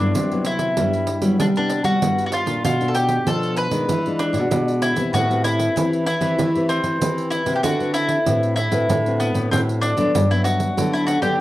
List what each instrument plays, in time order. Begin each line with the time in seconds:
Already playing: nylon-string guitar G2 D3 F#3, mandolin D4
0.00 nylon-string guitar B3 E4
0.14 nylon-string guitar C3, pandeiro
0.31 nylon-string guitar F#3 B3 E4, pandeiro
0.45 mandolin E4, pandeiro
0.59 pandeiro
0.77 nylon-string guitar G2 F#3 G3 B3 E4, pandeiro
0.93 pandeiro
1.07 pandeiro
1.22 nylon-string guitar F#3 G3 B3 E4, pandeiro
1.40 nylon-string guitar C3 G3, mandolin D4, pandeiro
1.56 nylon-string guitar B3 E4, mandolin D4, pandeiro
1.70 pandeiro
1.84 nylon-string guitar G3, mandolin F#4, pandeiro
2.02 nylon-string guitar G2 B3 E4, pandeiro
2.18 pandeiro
2.26 mandolin F#4
2.32 mandolin F4, pandeiro
2.46 nylon-string guitar A#2 A3 D4 F4, pandeiro
2.64 nylon-string guitar B2, mandolin F4, pandeiro
2.81 nylon-string guitar A3 D4 F4, pandeiro
2.88 mandolin A4
2.95 mandolin G4, pandeiro
3.09 pandeiro
3.26 nylon-string guitar B2 F3 A3 D4 F4, mandolin A4, pandeiro
3.43 pandeiro
3.56 mandolin B4, pandeiro
3.71 nylon-string guitar D#3 G#3 D4 F4, pandeiro
3.89 nylon-string guitar E3, pandeiro
4.06 nylon-string guitar G#3 D4 F4, pandeiro
4.19 mandolin D4, pandeiro
4.33 nylon-string guitar B2, pandeiro
4.51 nylon-string guitar B2 G#3 D4 F4, pandeiro
4.68 pandeiro
4.82 mandolin E4, pandeiro
4.96 nylon-string guitar E3 C4 G4 B4, pandeiro
5.13 nylon-string guitar A2 A3, mandolin F#4, pandeiro
5.30 nylon-string guitar C4 G4 B4, pandeiro
5.44 mandolin E4, pandeiro
5.60 pandeiro
5.76 nylon-string guitar E3 C4 G4 B4, pandeiro
5.93 pandeiro
6.06 mandolin E4, pandeiro
6.21 nylon-string guitar E3 C4 G4 B4, pandeiro
6.38 nylon-string guitar E3 A3, pandeiro
6.55 nylon-string guitar C4 G4 B4, pandeiro
6.69 mandolin C4, pandeiro
6.83 nylon-string guitar E3, pandeiro
7.01 nylon-string guitar E3 C4 G4 B4, pandeiro
7.18 pandeiro
7.31 mandolin E4, pandeiro
7.46 nylon-string guitar C3 C4 F#4 B4, pandeiro
7.56 mandolin G4
7.63 nylon-string guitar D3, mandolin F#4, pandeiro
7.79 nylon-string guitar C4 F#4 B4, pandeiro
7.94 mandolin E4, pandeiro
8.09 pandeiro
8.26 nylon-string guitar A2 C4 F#4 B4, pandeiro
8.43 pandeiro
8.56 mandolin E4, pandeiro
8.71 nylon-string guitar A2 C4 F#4 B4, pandeiro
8.89 nylon-string guitar A2 D3, pandeiro
9.06 nylon-string guitar C4 F#4 B4, pandeiro
9.20 mandolin B3, pandeiro
9.34 nylon-string guitar A2, pandeiro
9.51 nylon-string guitar A2 C4 F#4 B4, mandolin C4, pandeiro
9.69 pandeiro
9.81 mandolin D4, pandeiro
9.97 nylon-string guitar D3 F#3 B3 D4, pandeiro
10.15 nylon-string guitar G2, pandeiro
10.31 nylon-string guitar F#3 B3 D4, mandolin E4, pandeiro
10.44 mandolin F#4, pandeiro
10.60 pandeiro
10.77 nylon-string guitar D3 F#3 B3 D4, pandeiro
10.93 mandolin E4, pandeiro
11.07 mandolin F#4, pandeiro
11.22 nylon-string guitar D3 F#3 B3 D4, mandolin G4, pandeiro